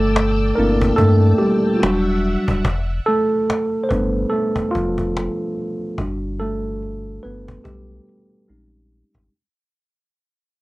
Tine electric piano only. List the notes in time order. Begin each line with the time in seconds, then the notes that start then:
Already playing: A3 A4
0.55 A#3 C4 D4 E4 A#4
0.96 A3 A4
1.38 G3 G4
1.75 F4
1.80 F#3 G3 D4 F#4
3.06 A3 A4
3.84 C5
3.89 G3 A3 B3 D4 B4
4.30 A3 A4
4.71 F3 F4
5.99 G3 D4 F#4
6.40 A3 A4
7.23 B3 B4
7.64 G3 G4
8.48 G#3 C4 C#4 D#4